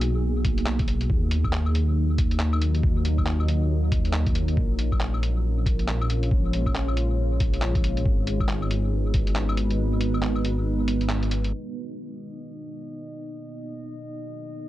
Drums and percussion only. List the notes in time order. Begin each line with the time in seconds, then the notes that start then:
0.01 closed hi-hat
0.45 kick, closed hi-hat
0.58 closed hi-hat
0.66 clap
0.79 kick, closed hi-hat
0.88 closed hi-hat
1.01 closed hi-hat
1.10 kick
1.31 closed hi-hat
1.44 kick, claves
1.53 clap
1.66 claves
1.75 closed hi-hat
2.18 kick, closed hi-hat
2.31 closed hi-hat
2.40 clap
2.53 claves
2.62 closed hi-hat
2.75 closed hi-hat
2.83 kick
3.05 closed hi-hat
3.18 kick, claves
3.26 clap
3.40 claves
3.48 closed hi-hat
3.92 kick, closed hi-hat
4.05 closed hi-hat
4.13 clap
4.27 kick, closed hi-hat
4.35 closed hi-hat
4.48 closed hi-hat
4.57 kick
4.79 closed hi-hat
4.92 kick, claves
5.00 clap
5.14 claves
5.23 closed hi-hat
5.66 kick, closed hi-hat
5.79 closed hi-hat
5.88 clap
6.01 claves
6.10 closed hi-hat
6.23 closed hi-hat
6.31 kick
6.53 closed hi-hat
6.66 kick, claves
6.75 clap
6.88 claves
6.97 closed hi-hat
7.40 kick, closed hi-hat
7.54 closed hi-hat
7.62 clap
7.75 kick, closed hi-hat
7.84 closed hi-hat
7.97 closed hi-hat
8.06 kick
8.27 closed hi-hat
8.40 kick, claves
8.49 clap
8.62 claves
8.71 closed hi-hat
9.14 kick, closed hi-hat
9.27 closed hi-hat
9.36 clap
9.49 claves
9.57 closed hi-hat
9.71 closed hi-hat
10.01 closed hi-hat
10.14 claves
10.22 clap
10.36 claves
10.45 closed hi-hat
10.88 closed hi-hat
11.01 closed hi-hat
11.09 clap
11.23 closed hi-hat
11.31 closed hi-hat
11.44 closed hi-hat